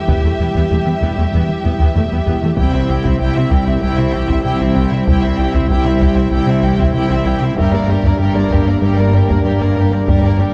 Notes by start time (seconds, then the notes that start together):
Already playing: G3 E4 G4 E5
0.07 E1 E2 E3 B3, taiko
0.23 E2 A3 E4
0.38 E1 E2 B3 E4
0.54 E2 E3 B3, taiko
0.69 E1 E2 A3 E4
0.85 E2 E3 B3
1.01 E1 E2 E3 B3, taiko
1.16 E2 A3 E4
1.32 E1 E2 E3 B3
1.49 E3
1.64 E1 E2 G3 B3
1.79 E2 E3 B3, taiko
1.95 E1 E2 E3 A3 B3
2.10 E2 G3 B3
2.26 E1 E2 E3 B3
2.42 E2 E3 A3 B3
2.57 C2 C3 G3 C4 E4 G4 C5 G5, taiko
2.73 C2 C4 E4 E5
2.88 C2 C4 E4 G4 G5
3.04 C2 C3 C4 E4 E5, taiko
3.20 C2 C4 E4 G4 G5
3.35 C3 G3 C4 E4 E5
3.51 C2 C3 E4 G4 G5, taiko
3.67 C2 C4 E4 E5
3.81 C2 C3 E4 G4 G5
3.97 C3 C4 E4 E5
4.13 C2 E3 E4 G4 G5
4.28 C2 C3 C4 E4 E5, taiko
4.44 C2 C3 G3 E4 G4 G5
4.60 C2 E3 C4 E4 E5
4.74 C2 C3 E4 G4 G5
4.91 C3 G3 C4 E4 E5
5.06 C2 C3 E4 G4 C5 G5, taiko
5.22 C2 C4 E4 E5
5.37 C2 C4 E4 G4 G5
5.54 C2 C3 C4 E4 E5, taiko
5.69 C2 C4 E4 G4 E5 G5
5.85 C3 G3 C4 E4 E5
6.00 C2 C3 E4 G4 G5, taiko
6.15 C2 C4 E4 E5
6.31 C2 C3 E4 G4 G5
6.47 C3 C4 E4 E5
6.63 C2 E3 E4 G4 G5
6.78 C2 C3 C4 E4 E5, taiko
6.93 C2 C3 G3 E4 G4 G5
7.10 C2 E3 C4 E4 E5
7.25 C2 C3 E4 G4 G5
7.41 C3 G3 C4 E4 E5
7.56 G1 G2 G3 A#3 D4 G4 A#4 E5, taiko
7.72 G2 A#3 G4 A#4 D5
7.88 G2 G3 G4 A#4
8.03 G2 G3 A#3 A#4 D5, taiko
8.19 G1 G2 G3 G4 A#4
8.34 G3 A#3 D4 A#4 D5
8.50 G2 G3 G4 A#4, taiko
8.66 G2 A#3 G4 A#4 D5
8.82 G1 G2 G3 G4 A#4
8.97 G3 A#3 A#4 D5
9.13 G2 G3 A#3 G4 A#4
9.28 G2 G3 A#3 A#4 D5, taiko
9.44 G1 G2 G3 D4 G4 A#4
9.60 G2 A#3 A#4 D5
9.76 G2 G3 G4 A#4
9.90 G3 A#3 D4 A#4 D5
10.05 G1 G2 G3 G4 A#4 D5, taiko
10.22 G2 A#3 G4 A#4 D5
10.38 G2 G3 G4 A#4